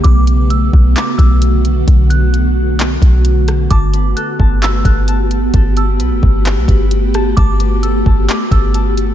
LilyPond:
<<
  \new Staff \with { instrumentName = "Synth bell" } { \time 4/4 \key g \lydian \tempo 4 = 131 d'''4 e'''4 d'''8 e'''8 r4 | r8 fis'''2~ fis'''8 r4 | d'''4 fis'''4 e'''8 fis'''8 r4 | r8 e'''2~ e'''8 r4 |
d'''4 e'''4 d'''8 e'''8 r4 | }
  \new Staff \with { instrumentName = "Harp" } { \time 4/4 \key g \lydian r1 | r1 | a''8 b'8 a'8 a''8 b'8 a'8 a''4 | a'8 a''8 b'4. b'4 a''8 |
a''8 b'8 a'8 a''8 b'8 a'8 a''4 | }
  \new Staff \with { instrumentName = "Ambient pad" } { \time 4/4 \key g \lydian <d a b fis'>1~ | <d a b fis'>1 | <a b fis' g'>1~ | <a b fis' g'>1~ |
<a b fis' g'>1 | }
  \new Staff \with { instrumentName = "808-style bass" } { \clef bass \time 4/4 \key g \lydian b,,4. b,,8 r8 b,,4. | b,,2~ b,,8 b,,4. | g,,4 r8 g,,4 g,,4. | g,,4 b,,16 g,,16 g,,8. b,,16 g,,4. |
g,,4. g,,8 r8 g,,4. | }
  \new DrumStaff \with { instrumentName = "Drums" } \drummode { \time 4/4 <hh bd>8 hh8 hh8 bd8 <hc hh>8 <hh bd>8 hh8 hh8 | <hh bd>8 hh8 hh4 <hc hh>8 <hh bd>8 hh8 <hh ss>8 | <hh bd>8 hh8 hh8 bd8 <hc hh>8 <hh bd>8 hh8 hh8 | <hh bd>8 hh8 hh8 bd8 <hc hh>8 <hh bd>8 hh8 <hh ss>8 |
<hh bd>8 hh8 hh8 bd8 <hc hh>8 <hh bd>8 hh8 hh8 | }
>>